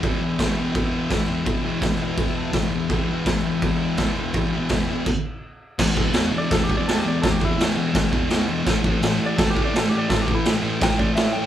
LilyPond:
<<
  \new Staff \with { instrumentName = "Transistor combo organ" } { \time 4/4 \key e \minor \tempo 4 = 167 << { r1 | r2 r8 a''8 g''8 e''8 | r1 | r1 |
r1 | r1 | r1 | r1 | } \\ { <b' e'' g''>1~ | <b' e'' g''>1 | <b' e'' g''>1~ | <b' e'' g''>2 r2 |
r1 | r1 | r1 | r1 | } >> }
  \new Staff \with { instrumentName = "Electric slide guitar" } { \time 4/4 \key e \minor r1 | r1 | r1 | r1 |
r4 \tuplet 3/2 { r4 d''8 a'8 g'8 d''8 a'8 g'8 d''8 } | \tuplet 3/2 { a'8 g'8 e'8 } r2. | r4 \tuplet 3/2 { r4 d''8 a'8 g'8 d''8 a'8 g'8 d''8 } | \tuplet 3/2 { a'8 g'8 e'8 } r4 g''8 d''8 e''8 g''8 | }
  \new Staff \with { instrumentName = "Distorted electric guitar" } { \clef bass \time 4/4 \key e \minor <e, b, e>8 <b, e>8 <e, b, e>8 <b, e>4. <e, b, e>8 <b, e>8 | <e, b, e>8 <b, e>8 <e, b, e>8 <b, e>4. <e, b, e>8 <b, e>8 | <e, b, e>8 <b, e>8 <e, b, e>8 <b, e>4. <e, b, e>8 <b, e>8 | <e, b, e>8 <b, e>8 <e, b, e>8 <b, e>8 r2 |
<e, b, e>8 <e, b, e>8 <e, b, e>8 <e, b, e>8 <e, b, e>8 <e, b, e>8 <e, b, e>8 <e, b, e>8 | <e, b, e>8 <e, b, e>8 <e, b, e>8 <e, b, e>8 <e, b, e>8 <e, b, e>8 <e, b, e>8 <e, b, e>8 | <a, e a>8 <a, e a>8 <a, e a>8 <a, e a>8 <a, e a>8 <a, e a>8 <a, e a>8 <a, e a>8 | <a, e a>8 <a, e a>8 <a, e a>8 <a, e a>8 <a, e a>8 <a, e a>8 <a, e a>8 <a, e a>8 | }
  \new DrumStaff \with { instrumentName = "Drums" } \drummode { \time 4/4 <cymc bd>4 <cymc bd sn>4 <cymc bd>4 <cymc bd sn>4 | <cymc bd>4 <cymc bd sn>4 <cymc bd>4 <cymc bd sn>4 | <cymc bd>4 <cymc bd sn>4 <cymc bd>4 <cymc bd sn>4 | <cymc bd>4 <cymc bd sn>4 <cymc bd>4 r4 |
<cymc bd sn>8 bd8 <cymc sn>4 <cymc bd sn>8 bd8 <cymc sn>4 | <cymc bd sn>8 bd8 <cymc sn>4 <cymc bd sn>8 bd8 <cymc sn>4 | <cymc bd sn>8 bd8 <cymc sn>4 <cymc bd sn>8 bd8 <cymc sn>4 | <cymc bd sn>8 bd8 <cymc sn>4 <cymc bd sn>8 bd8 <cymc sn>4 | }
>>